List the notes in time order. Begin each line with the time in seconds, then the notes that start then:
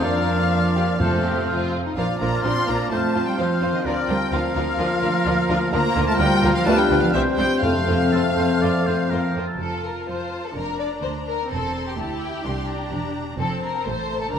0.02 F2 F3 A#3 D4 F4 A#4 D5 F5 F6
0.52 D4
0.76 G4
1.00 F2 F3 A3 C4 F4 A4 C5 F6
1.24 G4
1.48 F4
1.85 D#4
1.96 A#1 F3 A#3 D4 F4 A#4 D5 F5 F6
2.21 A#1 F3 A#3 D4 F4 A#4 A#5
2.44 A#1 F3 C4 D4 F4 A#4 C6
2.67 A#1 F3 A#3 D4 F4 A#4 A#5
2.91 F2 F3 A3 C4 F4 C5 A5 F6
3.14 F2 F3 C4 F4 C5
3.27 G3 G5
3.38 F2 F3 C4 F4 C5 F5 F6
3.61 F2 F3 C4 F4 C5
3.74 D#3 D#5
3.85 D2 D3 F3 D4 F4 A#4 D5 F6
4.09 D2 F3 G3 D4 F4 A#4 G5
4.32 D2 F3 D4 F4 A#4 F5 F6
4.55 D2 F3 D4 F4 A#4
4.78 D2 F3 A#3 D4 F4 A#4
5.02 D2 F3 D4 F4 A#4
5.25 D2 F3 D4 F4 A#4
5.49 D2 F3 D4 F4 A#4
5.72 D2 F3 A#3 D4 F4 A#4 A#5 F6
5.96 D2 F3 D4 F4 A#4
6.08 A3 A5
6.19 D2 F3 G3 D4 F4 A#4 G5
6.42 D2 F3 D4 F4 A#4
6.54 F3 F5
6.66 D2 G3 A3 B3 D4 F4 B4 A5 F6
6.78 G3 G5
6.89 D2 G3 D4 F4 B4
7.01 F3 F5
7.13 C2 E3 G3 C4 G4 C5 E5 G6
7.37 C2 G3 C4 G4 C5 G5
7.62 F2 F3 A3 C4 F4 A4 C5 F5 F6
7.87 F2 A3 C4 F4 C5
8.12 F2 A3 C4 F4 A4 C5
8.36 F2 A3 C4 F4 C5
8.61 F2 A3 C4 F4 C5 D5
8.85 F2 A3 C4 F4 C5
9.10 F2 A3 C4 F4 A#4 C5
9.35 F2 A3 C4 F4 C5
9.47 A4
9.59 F1 F2 F4 A4 A5
9.85 A#4
10.07 F2 F3 C5 A5
10.45 A4
10.54 F1 F2 D4 A#4 A#5
10.79 D5
11.02 D2 C5 A#5
11.27 A#4
11.50 E1 E2 C4 A4 C6
11.86 G4
11.97 D2 E4 G4 A5
12.21 G5
12.44 C2 D4 C6
12.68 A#5
12.91 E1 E2
13.38 F1 F2 C4 A4 A5
13.63 A#4
13.85 A1 A2 A3 C5 A5
14.21 A4
14.31 F1 F2 D4 A#4 A#5